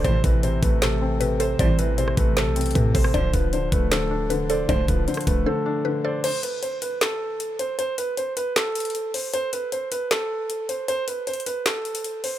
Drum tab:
CC |------------------------------------------------------------------------------------------------|------------------------------------------------------------------------------------------------|------------------------------------------------------------------------------------------------|------------------------------------------------------------------------------------------------|
HH |x-----------x-----------x-----------x-----------x-----------------------x-----------x-----------|x-----------x-----------x-----------x-----------x-----------x--x--x--x--x-----------o-----------|x-----------x-----------x-----------x-----------x-----------------------x-----------x-----------|x-----------x-----------x---x---x---x-----------------------------------------------------------|
CP |------------------------------------------------x-----------------------------------------------|------------------------------------------------x-----------------------------------------------|------------------------------------------------x-----------------------------------------------|------------------------------------------------------------------------------------------------|
SD |------------------------------------------------o-----------------------------------------------|------------------------------r-----------------o-----------------------------------------r-----|------------------------------------------------o-----------------------------------------------|------------------------------r-----------------------------------------------------------------|
BD |o-----------o-----------------------o-----------------------------------------------------------|o-----------------------------------o-----------------------------------o-----------o-----------|o-----------o-----------------------o-----------------------------------------------------------|o-----------o-----------------------o-----------------------------------------------------------|

CC |x-----------------------------------------------------------------------------------------------|------------------------------------------------------------------------------------------------|------------------------------------------------------------------------------------------------|------------------------------------------------------------------------------------------------|
HH |x-----------x-----------x-----------x-----------x-----------------------x-----------x-----------|x-----------x-----------x-----------x-----------x-----------x--x--x--x--x-----------o-----------|x-----------x-----------x-----------x-----------x-----------------------x-----------x-----------|x-----------x-----------x---x---x---x-----------x-----------x-----x-----x-----------o-----------|
CP |------------------------------------------------x-----------------------------------------------|------------------------------------------------x-----------------------------------------------|------------------------------------------------x-----------------------------------------------|------------------------------------------------x-----------------------------------------------|
SD |------------------------------------------------o-----------------------------------------------|------------------------------------------------o-----------------------------------------------|------------------------------------------------o-----------------------------------------------|------------------------------------------------o-----------------------------------------------|
BD |------------------------------------------------------------------------------------------------|------------------------------------------------------------------------------------------------|------------------------------------------------------------------------------------------------|------------------------------------------------------------------------------------------------|